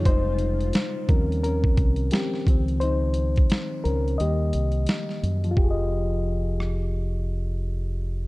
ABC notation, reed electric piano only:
X:1
M:4/4
L:1/16
Q:"Swing 16ths" 1/4=87
K:Fm
V:1 name="Reed electric piano"
c4 z2 [DB]2 [DB]4 [CG]3 z | [Ec]6 [DB]2 [Ge]6 z2 | [F,FGAe]16 |]
V:2 name="Reed electric piano" clef=bass
[G,A,E]6 [E,F,G,C]6 z2 [E,F,C]2- | [E,F,C]8 [E,G,B,]2 z6 | z16 |]